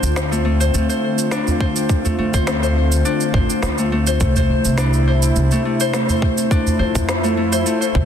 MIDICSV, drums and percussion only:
0, 0, Header, 1, 3, 480
1, 0, Start_track
1, 0, Key_signature, -1, "minor"
1, 0, Tempo, 576923
1, 1577, Time_signature, 4, 2, 24, 8
1, 6698, End_track
2, 0, Start_track
2, 0, Title_t, "Udu"
2, 1230, Note_on_c, 9, 64, 77
2, 1313, Note_off_c, 9, 64, 0
2, 1714, Note_on_c, 9, 64, 81
2, 1797, Note_off_c, 9, 64, 0
2, 2780, Note_on_c, 9, 64, 96
2, 2864, Note_off_c, 9, 64, 0
2, 3631, Note_on_c, 9, 64, 84
2, 3714, Note_off_c, 9, 64, 0
2, 5070, Note_on_c, 9, 64, 77
2, 5153, Note_off_c, 9, 64, 0
2, 5548, Note_on_c, 9, 64, 86
2, 5631, Note_off_c, 9, 64, 0
2, 6622, Note_on_c, 9, 64, 90
2, 6698, Note_off_c, 9, 64, 0
2, 6698, End_track
3, 0, Start_track
3, 0, Title_t, "Drums"
3, 28, Note_on_c, 9, 69, 58
3, 112, Note_off_c, 9, 69, 0
3, 136, Note_on_c, 9, 38, 97
3, 139, Note_on_c, 9, 69, 52
3, 219, Note_off_c, 9, 38, 0
3, 222, Note_off_c, 9, 69, 0
3, 272, Note_on_c, 9, 69, 32
3, 355, Note_off_c, 9, 69, 0
3, 507, Note_on_c, 9, 69, 59
3, 590, Note_off_c, 9, 69, 0
3, 619, Note_on_c, 9, 69, 55
3, 702, Note_off_c, 9, 69, 0
3, 746, Note_on_c, 9, 69, 32
3, 829, Note_off_c, 9, 69, 0
3, 986, Note_on_c, 9, 69, 59
3, 1069, Note_off_c, 9, 69, 0
3, 1093, Note_on_c, 9, 38, 91
3, 1096, Note_on_c, 9, 69, 48
3, 1177, Note_off_c, 9, 38, 0
3, 1180, Note_off_c, 9, 69, 0
3, 1225, Note_on_c, 9, 69, 32
3, 1308, Note_off_c, 9, 69, 0
3, 1335, Note_on_c, 9, 36, 95
3, 1419, Note_off_c, 9, 36, 0
3, 1465, Note_on_c, 9, 69, 59
3, 1548, Note_off_c, 9, 69, 0
3, 1576, Note_on_c, 9, 36, 114
3, 1576, Note_on_c, 9, 69, 52
3, 1659, Note_off_c, 9, 69, 0
3, 1660, Note_off_c, 9, 36, 0
3, 1705, Note_on_c, 9, 69, 29
3, 1789, Note_off_c, 9, 69, 0
3, 1946, Note_on_c, 9, 36, 101
3, 1946, Note_on_c, 9, 69, 62
3, 2030, Note_off_c, 9, 36, 0
3, 2030, Note_off_c, 9, 69, 0
3, 2056, Note_on_c, 9, 38, 98
3, 2059, Note_on_c, 9, 69, 51
3, 2139, Note_off_c, 9, 38, 0
3, 2142, Note_off_c, 9, 69, 0
3, 2191, Note_on_c, 9, 69, 29
3, 2274, Note_off_c, 9, 69, 0
3, 2429, Note_on_c, 9, 69, 66
3, 2512, Note_off_c, 9, 69, 0
3, 2541, Note_on_c, 9, 69, 57
3, 2624, Note_off_c, 9, 69, 0
3, 2668, Note_on_c, 9, 69, 32
3, 2751, Note_off_c, 9, 69, 0
3, 2779, Note_on_c, 9, 36, 103
3, 2862, Note_off_c, 9, 36, 0
3, 2910, Note_on_c, 9, 69, 63
3, 2993, Note_off_c, 9, 69, 0
3, 3016, Note_on_c, 9, 38, 94
3, 3019, Note_on_c, 9, 69, 49
3, 3099, Note_off_c, 9, 38, 0
3, 3102, Note_off_c, 9, 69, 0
3, 3146, Note_on_c, 9, 69, 31
3, 3229, Note_off_c, 9, 69, 0
3, 3386, Note_on_c, 9, 69, 66
3, 3469, Note_off_c, 9, 69, 0
3, 3497, Note_on_c, 9, 69, 56
3, 3500, Note_on_c, 9, 36, 114
3, 3581, Note_off_c, 9, 69, 0
3, 3584, Note_off_c, 9, 36, 0
3, 3628, Note_on_c, 9, 69, 34
3, 3711, Note_off_c, 9, 69, 0
3, 3868, Note_on_c, 9, 69, 63
3, 3951, Note_off_c, 9, 69, 0
3, 3974, Note_on_c, 9, 38, 90
3, 3977, Note_on_c, 9, 69, 56
3, 4057, Note_off_c, 9, 38, 0
3, 4060, Note_off_c, 9, 69, 0
3, 4104, Note_on_c, 9, 69, 34
3, 4187, Note_off_c, 9, 69, 0
3, 4347, Note_on_c, 9, 69, 67
3, 4430, Note_off_c, 9, 69, 0
3, 4459, Note_on_c, 9, 69, 57
3, 4542, Note_off_c, 9, 69, 0
3, 4586, Note_on_c, 9, 69, 34
3, 4670, Note_off_c, 9, 69, 0
3, 4828, Note_on_c, 9, 69, 64
3, 4911, Note_off_c, 9, 69, 0
3, 4938, Note_on_c, 9, 38, 85
3, 4941, Note_on_c, 9, 69, 48
3, 5021, Note_off_c, 9, 38, 0
3, 5024, Note_off_c, 9, 69, 0
3, 5069, Note_on_c, 9, 69, 33
3, 5152, Note_off_c, 9, 69, 0
3, 5177, Note_on_c, 9, 36, 97
3, 5260, Note_off_c, 9, 36, 0
3, 5306, Note_on_c, 9, 69, 65
3, 5389, Note_off_c, 9, 69, 0
3, 5417, Note_on_c, 9, 36, 118
3, 5421, Note_on_c, 9, 69, 54
3, 5500, Note_off_c, 9, 36, 0
3, 5504, Note_off_c, 9, 69, 0
3, 5548, Note_on_c, 9, 69, 30
3, 5631, Note_off_c, 9, 69, 0
3, 5786, Note_on_c, 9, 36, 106
3, 5787, Note_on_c, 9, 69, 65
3, 5869, Note_off_c, 9, 36, 0
3, 5870, Note_off_c, 9, 69, 0
3, 5896, Note_on_c, 9, 38, 91
3, 5899, Note_on_c, 9, 69, 51
3, 5979, Note_off_c, 9, 38, 0
3, 5982, Note_off_c, 9, 69, 0
3, 6023, Note_on_c, 9, 69, 33
3, 6106, Note_off_c, 9, 69, 0
3, 6263, Note_on_c, 9, 69, 68
3, 6346, Note_off_c, 9, 69, 0
3, 6376, Note_on_c, 9, 69, 59
3, 6459, Note_off_c, 9, 69, 0
3, 6507, Note_on_c, 9, 69, 34
3, 6590, Note_off_c, 9, 69, 0
3, 6615, Note_on_c, 9, 36, 100
3, 6698, Note_off_c, 9, 36, 0
3, 6698, End_track
0, 0, End_of_file